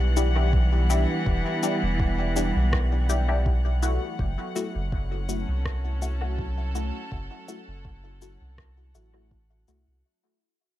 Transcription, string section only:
Already playing: E3 G3 B3 A4 F#5
4.20 F#3
4.56 C#4
5.44 A4

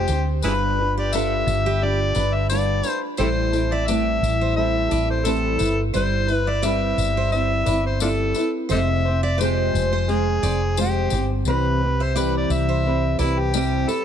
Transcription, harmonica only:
Already playing: G4
0.44 E4 G#4 B4
0.99 D5
1.14 E5
1.84 D5
2.34 E5
2.50 D5
3.19 G4 A4 C5
3.73 D5
3.87 E5
4.56 E5
5.11 C5
5.26 A4
5.96 C5
6.32 B4
6.49 D5
6.64 E5
7.32 E5
7.86 C5
8.02 D4 F4 A4
8.71 A4 C5 E5
9.23 D5
9.40 C5
10.10 G#4
10.81 G4
11.49 B4
12.03 C5
12.18 B4
12.37 D5
12.52 E5
13.20 E4
13.39 G4
13.89 A4

